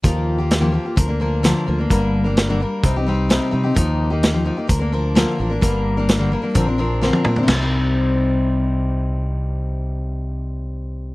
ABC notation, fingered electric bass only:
X:1
M:4/4
L:1/8
Q:1/4=129
K:Cm
V:1 name="Fingered electric bass" clef=bass
E,,4 D,,3 D,, | G,,,4 C,,3 C, | E,,4 D,,3 =A,,, | G,,,4 B,,,3 B,, |
C,,8- | C,,8 |]